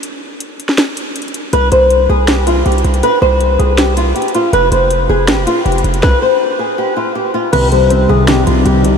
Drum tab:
CC |------------------------------------------------|------------------------------------------------|------------------------------------------------|------------------------------------------------|
HH |x-----------x-----x-----x-----x-----x-x-x-x-----|x-----x-----x-----------x-----x-----x-x-x-x--x--|x-----------x-----x-----x-----x-----x-x-x-x-----|x-----x-----x-----------x-----x-----x-x-x-x--x--|
SD |---------------------o--o-----------------------|------------------------o-----------------------|------------------------o-----------------------|------------------------o-----------------------|
BD |------------------------------------------------|------------------------------------------------|------------------------------------------------|------------------------------------------------|

CC |------------------------------------------------|x-----------------------------------------------|
HH |------------------------------------------------|x-----x-----x-----------x-----x-----x-----x-----|
SD |o-----------------------------------------------|------------------------o-----------------------|
BD |o-----------------------------------------------|------------------------------------------------|